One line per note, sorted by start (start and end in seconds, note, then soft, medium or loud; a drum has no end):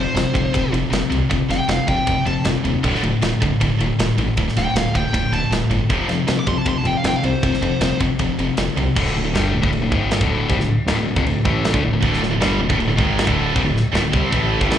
0.00 0.14 F2 medium
0.00 0.14 C3 medium
0.00 0.72 C5 medium
0.14 0.27 F1 loud
0.14 0.32 F2 medium
0.14 0.33 C3 medium
0.14 snare loud
0.14 ride medium
0.34 0.47 F1 medium
0.34 0.51 F2 medium
0.34 0.51 C3 medium
0.34 kick medium
0.34 ride medium
0.54 0.66 F1 medium
0.54 0.71 F2 medium
0.54 0.71 C3 medium
0.54 kick medium
0.54 ride loud
0.72 0.84 F1 loud
0.72 0.89 F2 medium
0.72 0.89 C3 medium
0.72 ride medium
0.90 1.04 F1 medium
0.90 1.08 F2 medium
0.90 1.08 C3 medium
0.90 snare loud
0.90 ride medium
1.10 1.23 C2 loud
1.10 1.28 F2 medium
1.10 1.28 C3 medium
1.10 ride medium
1.29 1.43 F1 medium
1.29 1.47 F2 medium
1.29 1.47 C3 medium
1.29 kick medium
1.29 ride medium
1.49 1.61 F1 loud
1.49 1.67 F2 medium
1.49 1.67 C3 medium
1.49 1.71 G5 loud
1.49 snare soft
1.49 ride medium
1.68 1.80 F1 medium
1.68 1.86 F2 medium
1.68 1.86 C3 medium
1.68 1.88 F5 medium
1.68 snare loud
1.68 ride medium
1.87 2.00 F1 medium
1.87 2.05 F2 medium
1.87 2.05 C3 medium
1.87 2.26 G5 medium
1.87 kick medium
1.87 ride medium
2.07 2.19 F1 medium
2.07 2.24 F2 medium
2.07 2.24 C3 medium
2.07 kick medium
2.07 ride medium
2.25 2.38 F1 medium
2.25 2.43 F2 medium
2.25 2.43 C3 medium
2.25 2.45 A5 loud
2.25 ride medium
2.44 2.57 F1 loud
2.44 2.62 F2 medium
2.44 2.62 C3 medium
2.44 snare loud
2.44 ride medium
2.64 2.77 D#1 medium
2.64 2.81 F2 medium
2.64 2.82 C3 medium
2.64 ride medium
2.83 2.96 D1 loud
2.83 3.01 D2 loud
2.83 3.02 A2 medium
2.83 3.02 D3 loud
2.83 kick loud
2.83 crash medium
2.95 snare soft
3.03 3.15 D1 loud
3.03 3.20 D2 medium
3.03 3.20 A2 medium
3.03 ride medium
3.22 3.34 D1 medium
3.22 3.39 D2 medium
3.22 3.39 A2 medium
3.22 snare loud
3.22 ride medium
3.42 3.53 D1 medium
3.42 3.59 D2 medium
3.42 3.59 A2 medium
3.42 kick medium
3.42 ride medium
3.61 3.73 D1 medium
3.61 3.78 D2 medium
3.61 3.78 A2 medium
3.61 kick medium
3.61 ride loud
3.80 3.92 D1 loud
3.80 3.97 D2 medium
3.80 3.98 A2 medium
3.80 ride medium
3.99 4.11 D1 medium
3.99 4.16 D2 medium
3.99 4.16 A2 medium
3.99 snare loud
3.99 ride loud
4.18 4.30 A1 medium
4.18 4.35 D2 medium
4.18 4.35 A2 medium
4.18 ride medium
4.37 4.49 D1 medium
4.37 4.55 D2 medium
4.37 4.55 A2 medium
4.37 kick loud
4.37 ride medium
4.48 snare soft
4.57 4.69 D1 loud
4.57 4.74 D2 medium
4.57 4.74 A2 medium
4.57 4.76 G5 medium
4.57 snare soft
4.57 ride medium
4.75 4.87 D1 medium
4.75 4.93 D2 medium
4.75 4.93 A2 medium
4.75 4.96 F5 medium
4.75 snare loud
4.75 ride medium
4.94 5.07 D1 medium
4.94 5.12 D2 medium
4.94 5.12 A2 medium
4.94 5.33 G5 medium
4.94 kick medium
4.94 ride medium
5.13 5.26 D1 medium
5.13 5.30 D2 medium
5.13 5.31 A2 medium
5.13 kick medium
5.13 ride medium
5.32 5.44 D1 loud
5.32 5.50 D2 medium
5.32 5.50 A2 medium
5.32 5.52 A5 loud
5.32 ride medium
5.51 5.63 D1 medium
5.51 5.69 D2 medium
5.51 5.69 A2 medium
5.51 snare loud
5.51 ride medium
5.70 5.82 G1 medium
5.70 5.88 D2 medium
5.70 5.88 A2 medium
5.70 ride medium
5.89 6.02 F1 medium
5.89 6.07 F2 medium
5.89 6.07 C3 medium
5.89 6.08 F3 loud
5.89 kick medium
5.89 ride medium
6.08 6.20 F1 loud
6.08 6.26 F2 medium
6.08 6.26 C3 medium
6.08 snare soft
6.08 ride medium
6.27 6.39 F1 medium
6.27 6.45 F2 medium
6.27 6.45 C3 medium
6.27 snare loud
6.27 ride medium
6.39 6.47 D6 loud
6.47 6.59 F1 medium
6.47 6.64 F2 medium
6.47 6.64 C3 medium
6.47 6.58 C6 medium
6.47 kick medium
6.47 ride medium
6.58 6.67 A5 loud
6.65 6.78 F1 medium
6.65 6.83 F2 medium
6.65 6.83 C3 medium
6.65 6.78 C6 medium
6.65 kick medium
6.65 ride medium
6.78 6.87 A5 medium
6.83 6.96 F1 loud
6.83 7.03 F2 medium
6.83 7.03 C3 medium
6.83 6.97 G5 medium
6.83 ride medium
6.97 7.06 F5 medium
7.04 7.16 F1 medium
7.04 7.22 F2 medium
7.04 7.22 C3 medium
7.04 7.16 G5 medium
7.04 snare loud
7.04 ride loud
7.16 7.24 F5 loud
7.23 7.35 C2 medium
7.23 7.41 F2 medium
7.23 7.41 C3 medium
7.23 7.99 C5 loud
7.23 ride medium
7.43 7.55 F1 loud
7.43 7.61 F2 medium
7.43 7.61 C3 medium
7.43 kick loud
7.43 ride medium
7.53 snare soft
7.62 7.74 F1 loud
7.62 7.79 F2 medium
7.62 7.80 C3 medium
7.62 ride medium
7.80 7.93 F1 loud
7.80 7.99 F2 medium
7.80 7.99 C3 medium
7.80 snare loud
7.80 ride medium
8.00 8.12 F1 medium
8.00 8.18 F2 medium
8.00 8.18 C3 medium
8.00 kick medium
8.00 ride medium
8.19 8.31 F1 loud
8.19 8.37 F2 medium
8.19 8.38 C3 medium
8.19 kick medium
8.19 ride loud
8.39 8.51 F1 medium
8.39 8.57 F2 medium
8.39 8.57 C3 medium
8.39 ride medium
8.57 8.70 F1 medium
8.57 8.75 F2 medium
8.57 8.75 C3 medium
8.57 snare loud
8.57 ride medium
8.77 8.89 C2 medium
8.77 8.94 F2 medium
8.77 8.95 C3 medium
8.77 ride medium
8.96 9.14 D1 medium
8.96 9.15 D2 medium
8.96 9.15 A2 loud
8.96 9.15 D3 loud
8.96 kick loud
8.96 crash loud
8.96 crash medium
9.06 snare soft
9.16 9.24 D1 medium
9.16 9.24 D2 medium
9.16 9.23 A2 medium
9.25 9.34 D1 medium
9.25 9.34 D2 medium
9.25 9.33 A2 medium
9.34 9.53 G1 loud
9.34 9.53 G2 medium
9.34 9.53 D3 loud
9.34 9.53 G3 loud
9.34 snare loud
9.34 crash medium
9.53 9.62 D1 medium
9.53 9.60 D2 medium
9.53 9.61 A2 medium
9.62 9.72 D1 medium
9.62 9.70 D2 medium
9.62 9.71 A2 loud
9.62 kick loud
9.72 9.82 D1 medium
9.72 9.81 D2 medium
9.72 9.81 A2 medium
9.72 crash medium
9.82 9.91 D1 medium
9.82 9.91 D2 medium
9.82 9.91 A2 medium
9.91 10.19 G#1 medium
9.91 10.20 G#2 medium
9.91 10.20 D#3 loud
9.91 10.20 G#3 medium
9.91 kick loud
10.11 snare loud
10.11 crash medium
10.20 10.47 D1 loud
10.20 10.49 D2 loud
10.20 10.49 A2 loud
10.20 10.49 D3 loud
10.20 kick loud
10.49 10.58 C2 medium
10.49 10.58 C3 loud
10.49 10.59 G3 loud
10.49 kick loud
10.49 crash medium
10.58 10.76 D1 medium
10.58 10.75 D2 medium
10.58 10.74 A2 medium
10.58 snare soft
10.87 10.96 D1 loud
10.87 10.97 D2 loud
10.87 10.97 A2 loud
10.87 snare loud
10.87 crash medium
10.97 11.15 D1 medium
10.97 11.13 D2 medium
10.97 11.13 A2 medium
11.16 11.25 F1 loud
11.16 11.25 F2 medium
11.16 11.25 C3 medium
11.16 kick loud
11.25 11.43 D1 medium
11.25 11.41 D2 medium
11.25 11.41 A2 medium
11.25 crash medium
11.45 11.72 A1 loud
11.45 11.73 A2 medium
11.45 11.73 E3 medium
11.45 11.73 A3 loud
11.45 kick loud
11.64 snare loud
11.64 crash medium
11.73 11.83 D2 loud
11.73 11.82 D3 loud
11.73 11.83 A3 loud
11.73 kick loud
11.83 11.92 D1 medium
11.83 11.92 D2 medium
11.83 11.92 A2 medium
11.93 12.02 D1 medium
11.93 12.01 D2 medium
11.93 12.02 A2 medium
12.02 12.20 D1 medium
12.02 12.21 D2 loud
12.02 12.21 A2 loud
12.02 12.22 D3 loud
12.02 kick loud
12.02 crash medium
12.13 snare soft
12.22 12.31 D1 loud
12.22 12.30 D2 medium
12.22 12.31 A2 medium
12.22 snare soft
12.31 12.40 D1 medium
12.31 12.40 D2 medium
12.31 12.40 A2 medium
12.40 12.58 G1 loud
12.40 12.59 G2 loud
12.40 12.59 D3 loud
12.40 12.59 G3 loud
12.40 snare loud
12.40 crash medium
12.59 12.68 D1 medium
12.59 12.68 D2 medium
12.59 12.69 A2 medium
12.69 12.77 D1 medium
12.69 12.78 D2 medium
12.69 12.78 A2 loud
12.69 kick loud
12.78 12.87 D1 medium
12.78 12.86 D2 medium
12.78 12.87 A2 medium
12.78 crash medium
12.87 12.97 D1 medium
12.87 12.96 D2 medium
12.87 12.97 A2 medium
12.97 13.25 G#1 loud
12.97 13.25 G#2 loud
12.97 13.26 D#3 loud
12.97 13.26 G#3 medium
12.97 kick loud
13.18 snare loud
13.18 crash medium
13.26 13.53 D1 loud
13.26 13.54 D2 medium
13.26 13.55 A2 loud
13.26 13.55 D3 loud
13.26 kick loud
13.54 13.64 C2 medium
13.54 13.64 C3 loud
13.54 13.64 G3 loud
13.54 kick loud
13.54 crash medium
13.64 13.83 D1 medium
13.64 13.80 D2 medium
13.64 13.80 A2 medium
13.77 snare soft
13.93 14.02 D1 loud
13.93 14.02 D2 medium
13.93 14.02 A2 loud
13.93 snare loud
13.93 crash medium
14.03 14.12 D1 medium
14.03 14.12 D2 medium
14.03 14.12 A2 medium
14.12 14.31 C2 medium
14.12 14.30 C3 medium
14.12 14.31 G3 medium
14.12 14.31 C4 loud
14.12 kick loud
14.31 14.59 A1 loud
14.31 14.60 A2 medium
14.31 14.60 E3 loud
14.31 14.60 A3 loud
14.31 kick loud
14.31 crash medium
14.60 14.69 G1 loud
14.60 14.69 G2 loud
14.60 14.69 D3 loud
14.60 kick loud
14.69 14.78 A1 loud
14.69 14.78 A2 loud
14.69 14.78 E3 medium
14.69 14.78 A3 loud
14.69 snare loud
14.69 crash medium